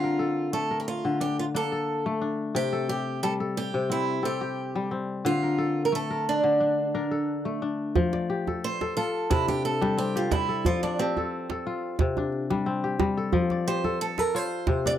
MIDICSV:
0, 0, Header, 1, 4, 480
1, 0, Start_track
1, 0, Key_signature, -1, "major"
1, 0, Tempo, 673401
1, 1820, Time_signature, 4, 2, 24, 8
1, 10682, End_track
2, 0, Start_track
2, 0, Title_t, "Steel-string acoustic guitar"
2, 0, Program_c, 0, 25
2, 0, Note_on_c, 0, 65, 94
2, 376, Note_off_c, 0, 65, 0
2, 379, Note_on_c, 0, 69, 87
2, 565, Note_off_c, 0, 69, 0
2, 568, Note_on_c, 0, 67, 47
2, 616, Note_off_c, 0, 67, 0
2, 626, Note_on_c, 0, 65, 70
2, 845, Note_off_c, 0, 65, 0
2, 863, Note_on_c, 0, 67, 83
2, 991, Note_off_c, 0, 67, 0
2, 994, Note_on_c, 0, 65, 72
2, 1029, Note_off_c, 0, 65, 0
2, 1114, Note_on_c, 0, 69, 75
2, 1558, Note_off_c, 0, 69, 0
2, 1826, Note_on_c, 0, 67, 92
2, 2047, Note_off_c, 0, 67, 0
2, 2063, Note_on_c, 0, 67, 82
2, 2299, Note_off_c, 0, 67, 0
2, 2302, Note_on_c, 0, 69, 88
2, 2367, Note_off_c, 0, 69, 0
2, 2547, Note_on_c, 0, 67, 84
2, 2788, Note_off_c, 0, 67, 0
2, 2791, Note_on_c, 0, 64, 88
2, 3011, Note_off_c, 0, 64, 0
2, 3032, Note_on_c, 0, 67, 72
2, 3480, Note_off_c, 0, 67, 0
2, 3749, Note_on_c, 0, 65, 93
2, 4168, Note_off_c, 0, 65, 0
2, 4170, Note_on_c, 0, 70, 75
2, 4222, Note_off_c, 0, 70, 0
2, 4242, Note_on_c, 0, 69, 95
2, 4458, Note_off_c, 0, 69, 0
2, 4482, Note_on_c, 0, 62, 80
2, 5406, Note_off_c, 0, 62, 0
2, 6161, Note_on_c, 0, 72, 91
2, 6388, Note_off_c, 0, 72, 0
2, 6391, Note_on_c, 0, 69, 93
2, 6612, Note_off_c, 0, 69, 0
2, 6633, Note_on_c, 0, 64, 102
2, 6757, Note_off_c, 0, 64, 0
2, 6760, Note_on_c, 0, 67, 96
2, 6873, Note_off_c, 0, 67, 0
2, 6878, Note_on_c, 0, 69, 86
2, 7096, Note_off_c, 0, 69, 0
2, 7117, Note_on_c, 0, 67, 90
2, 7241, Note_off_c, 0, 67, 0
2, 7247, Note_on_c, 0, 65, 75
2, 7355, Note_on_c, 0, 64, 82
2, 7356, Note_off_c, 0, 65, 0
2, 7597, Note_off_c, 0, 64, 0
2, 7599, Note_on_c, 0, 65, 89
2, 7716, Note_off_c, 0, 65, 0
2, 7719, Note_on_c, 0, 62, 76
2, 7832, Note_off_c, 0, 62, 0
2, 7836, Note_on_c, 0, 60, 66
2, 8521, Note_off_c, 0, 60, 0
2, 9748, Note_on_c, 0, 72, 91
2, 9967, Note_off_c, 0, 72, 0
2, 9987, Note_on_c, 0, 69, 85
2, 10114, Note_off_c, 0, 69, 0
2, 10114, Note_on_c, 0, 70, 81
2, 10235, Note_off_c, 0, 70, 0
2, 10235, Note_on_c, 0, 72, 106
2, 10592, Note_off_c, 0, 72, 0
2, 10598, Note_on_c, 0, 74, 98
2, 10634, Note_off_c, 0, 74, 0
2, 10682, End_track
3, 0, Start_track
3, 0, Title_t, "Kora"
3, 0, Program_c, 1, 46
3, 0, Note_on_c, 1, 50, 77
3, 0, Note_on_c, 1, 60, 58
3, 27, Note_on_c, 1, 70, 59
3, 137, Note_on_c, 1, 69, 59
3, 378, Note_on_c, 1, 57, 74
3, 421, Note_off_c, 1, 70, 0
3, 505, Note_on_c, 1, 70, 57
3, 548, Note_off_c, 1, 69, 0
3, 738, Note_off_c, 1, 50, 0
3, 746, Note_on_c, 1, 50, 73
3, 859, Note_on_c, 1, 62, 59
3, 936, Note_off_c, 1, 60, 0
3, 1099, Note_off_c, 1, 62, 0
3, 1101, Note_on_c, 1, 58, 56
3, 1102, Note_on_c, 1, 62, 67
3, 1144, Note_off_c, 1, 57, 0
3, 1226, Note_on_c, 1, 69, 57
3, 1269, Note_off_c, 1, 70, 0
3, 1468, Note_on_c, 1, 57, 73
3, 1510, Note_off_c, 1, 58, 0
3, 1576, Note_off_c, 1, 62, 0
3, 1579, Note_on_c, 1, 62, 63
3, 1816, Note_on_c, 1, 48, 87
3, 1855, Note_off_c, 1, 50, 0
3, 1941, Note_off_c, 1, 69, 0
3, 1944, Note_on_c, 1, 69, 62
3, 2061, Note_on_c, 1, 67, 62
3, 2305, Note_on_c, 1, 55, 78
3, 2422, Note_off_c, 1, 69, 0
3, 2425, Note_on_c, 1, 69, 64
3, 2658, Note_off_c, 1, 48, 0
3, 2666, Note_on_c, 1, 48, 78
3, 2776, Note_off_c, 1, 62, 0
3, 2777, Note_on_c, 1, 60, 60
3, 2891, Note_off_c, 1, 57, 0
3, 3011, Note_off_c, 1, 60, 0
3, 3013, Note_off_c, 1, 69, 0
3, 3014, Note_on_c, 1, 60, 66
3, 3016, Note_on_c, 1, 69, 59
3, 3067, Note_off_c, 1, 67, 0
3, 3144, Note_on_c, 1, 67, 61
3, 3381, Note_off_c, 1, 55, 0
3, 3389, Note_on_c, 1, 55, 77
3, 3499, Note_off_c, 1, 60, 0
3, 3501, Note_on_c, 1, 60, 57
3, 3740, Note_on_c, 1, 50, 82
3, 3780, Note_off_c, 1, 48, 0
3, 3780, Note_off_c, 1, 55, 0
3, 3871, Note_on_c, 1, 70, 61
3, 3914, Note_off_c, 1, 69, 0
3, 3981, Note_on_c, 1, 69, 63
3, 4151, Note_off_c, 1, 67, 0
3, 4222, Note_on_c, 1, 57, 73
3, 4265, Note_off_c, 1, 70, 0
3, 4352, Note_on_c, 1, 70, 66
3, 4395, Note_off_c, 1, 69, 0
3, 4579, Note_off_c, 1, 50, 0
3, 4588, Note_on_c, 1, 50, 76
3, 4707, Note_on_c, 1, 62, 54
3, 4784, Note_off_c, 1, 60, 0
3, 4948, Note_off_c, 1, 62, 0
3, 4948, Note_off_c, 1, 70, 0
3, 4951, Note_on_c, 1, 62, 69
3, 4951, Note_on_c, 1, 70, 54
3, 4994, Note_off_c, 1, 57, 0
3, 5070, Note_on_c, 1, 69, 54
3, 5312, Note_on_c, 1, 57, 64
3, 5355, Note_off_c, 1, 70, 0
3, 5429, Note_off_c, 1, 62, 0
3, 5431, Note_on_c, 1, 62, 66
3, 5670, Note_on_c, 1, 53, 91
3, 5702, Note_off_c, 1, 50, 0
3, 5796, Note_on_c, 1, 74, 61
3, 5914, Note_on_c, 1, 67, 58
3, 6009, Note_off_c, 1, 69, 0
3, 6043, Note_on_c, 1, 69, 65
3, 6279, Note_off_c, 1, 69, 0
3, 6282, Note_on_c, 1, 69, 57
3, 6395, Note_on_c, 1, 65, 70
3, 6585, Note_off_c, 1, 74, 0
3, 6629, Note_off_c, 1, 62, 0
3, 6631, Note_on_c, 1, 48, 72
3, 6662, Note_off_c, 1, 53, 0
3, 6736, Note_off_c, 1, 57, 0
3, 6759, Note_on_c, 1, 62, 64
3, 6920, Note_off_c, 1, 67, 0
3, 6994, Note_off_c, 1, 62, 0
3, 6996, Note_on_c, 1, 55, 76
3, 6997, Note_on_c, 1, 62, 61
3, 7111, Note_on_c, 1, 60, 63
3, 7221, Note_off_c, 1, 69, 0
3, 7240, Note_on_c, 1, 67, 59
3, 7340, Note_off_c, 1, 55, 0
3, 7349, Note_on_c, 1, 55, 74
3, 7474, Note_off_c, 1, 65, 0
3, 7476, Note_on_c, 1, 69, 66
3, 7597, Note_on_c, 1, 53, 84
3, 7621, Note_off_c, 1, 48, 0
3, 7621, Note_off_c, 1, 55, 0
3, 7725, Note_on_c, 1, 74, 71
3, 7832, Note_off_c, 1, 67, 0
3, 7835, Note_on_c, 1, 67, 61
3, 7962, Note_off_c, 1, 69, 0
3, 7965, Note_on_c, 1, 69, 71
3, 8194, Note_off_c, 1, 62, 0
3, 8203, Note_off_c, 1, 69, 0
3, 8206, Note_on_c, 1, 69, 62
3, 8315, Note_on_c, 1, 65, 73
3, 8394, Note_off_c, 1, 60, 0
3, 8514, Note_off_c, 1, 74, 0
3, 8557, Note_on_c, 1, 48, 72
3, 8579, Note_off_c, 1, 53, 0
3, 8679, Note_on_c, 1, 62, 64
3, 8842, Note_off_c, 1, 67, 0
3, 8909, Note_off_c, 1, 62, 0
3, 8912, Note_on_c, 1, 62, 60
3, 8913, Note_on_c, 1, 55, 71
3, 9026, Note_on_c, 1, 60, 66
3, 9145, Note_off_c, 1, 69, 0
3, 9151, Note_on_c, 1, 67, 61
3, 9255, Note_off_c, 1, 55, 0
3, 9264, Note_on_c, 1, 55, 76
3, 9391, Note_on_c, 1, 69, 67
3, 9394, Note_off_c, 1, 65, 0
3, 9500, Note_on_c, 1, 53, 93
3, 9537, Note_off_c, 1, 48, 0
3, 9537, Note_off_c, 1, 55, 0
3, 9632, Note_on_c, 1, 74, 71
3, 9744, Note_off_c, 1, 67, 0
3, 9747, Note_on_c, 1, 67, 57
3, 9866, Note_off_c, 1, 69, 0
3, 9869, Note_on_c, 1, 69, 78
3, 10108, Note_off_c, 1, 69, 0
3, 10109, Note_off_c, 1, 62, 0
3, 10111, Note_on_c, 1, 69, 70
3, 10226, Note_on_c, 1, 65, 74
3, 10309, Note_off_c, 1, 60, 0
3, 10422, Note_off_c, 1, 74, 0
3, 10465, Note_on_c, 1, 48, 77
3, 10494, Note_off_c, 1, 53, 0
3, 10591, Note_on_c, 1, 62, 70
3, 10682, Note_off_c, 1, 48, 0
3, 10682, Note_off_c, 1, 62, 0
3, 10682, Note_off_c, 1, 65, 0
3, 10682, Note_off_c, 1, 67, 0
3, 10682, Note_off_c, 1, 69, 0
3, 10682, End_track
4, 0, Start_track
4, 0, Title_t, "Djembe"
4, 5670, Note_on_c, 9, 64, 71
4, 5742, Note_off_c, 9, 64, 0
4, 5795, Note_on_c, 9, 62, 53
4, 5866, Note_off_c, 9, 62, 0
4, 6040, Note_on_c, 9, 63, 51
4, 6111, Note_off_c, 9, 63, 0
4, 6281, Note_on_c, 9, 62, 56
4, 6352, Note_off_c, 9, 62, 0
4, 6635, Note_on_c, 9, 62, 64
4, 6635, Note_on_c, 9, 64, 61
4, 6707, Note_off_c, 9, 62, 0
4, 6707, Note_off_c, 9, 64, 0
4, 6756, Note_on_c, 9, 62, 20
4, 6756, Note_on_c, 9, 63, 53
4, 6828, Note_off_c, 9, 62, 0
4, 6828, Note_off_c, 9, 63, 0
4, 6873, Note_on_c, 9, 62, 19
4, 6945, Note_off_c, 9, 62, 0
4, 7001, Note_on_c, 9, 62, 53
4, 7073, Note_off_c, 9, 62, 0
4, 7353, Note_on_c, 9, 62, 65
4, 7353, Note_on_c, 9, 63, 77
4, 7424, Note_off_c, 9, 62, 0
4, 7424, Note_off_c, 9, 63, 0
4, 7591, Note_on_c, 9, 64, 62
4, 7662, Note_off_c, 9, 64, 0
4, 7719, Note_on_c, 9, 62, 53
4, 7790, Note_off_c, 9, 62, 0
4, 7959, Note_on_c, 9, 63, 47
4, 8031, Note_off_c, 9, 63, 0
4, 8195, Note_on_c, 9, 62, 59
4, 8266, Note_off_c, 9, 62, 0
4, 8546, Note_on_c, 9, 62, 60
4, 8546, Note_on_c, 9, 64, 61
4, 8617, Note_off_c, 9, 62, 0
4, 8617, Note_off_c, 9, 64, 0
4, 8674, Note_on_c, 9, 62, 20
4, 8674, Note_on_c, 9, 63, 53
4, 8745, Note_off_c, 9, 62, 0
4, 8745, Note_off_c, 9, 63, 0
4, 8785, Note_on_c, 9, 62, 22
4, 8856, Note_off_c, 9, 62, 0
4, 8914, Note_on_c, 9, 62, 52
4, 8985, Note_off_c, 9, 62, 0
4, 9152, Note_on_c, 9, 62, 20
4, 9224, Note_off_c, 9, 62, 0
4, 9263, Note_on_c, 9, 62, 65
4, 9263, Note_on_c, 9, 63, 75
4, 9334, Note_off_c, 9, 62, 0
4, 9334, Note_off_c, 9, 63, 0
4, 9498, Note_on_c, 9, 64, 64
4, 9570, Note_off_c, 9, 64, 0
4, 9624, Note_on_c, 9, 62, 43
4, 9695, Note_off_c, 9, 62, 0
4, 9867, Note_on_c, 9, 63, 48
4, 9938, Note_off_c, 9, 63, 0
4, 10106, Note_on_c, 9, 62, 55
4, 10178, Note_off_c, 9, 62, 0
4, 10456, Note_on_c, 9, 62, 64
4, 10456, Note_on_c, 9, 64, 53
4, 10527, Note_off_c, 9, 62, 0
4, 10527, Note_off_c, 9, 64, 0
4, 10589, Note_on_c, 9, 62, 17
4, 10589, Note_on_c, 9, 63, 43
4, 10660, Note_off_c, 9, 62, 0
4, 10660, Note_off_c, 9, 63, 0
4, 10682, End_track
0, 0, End_of_file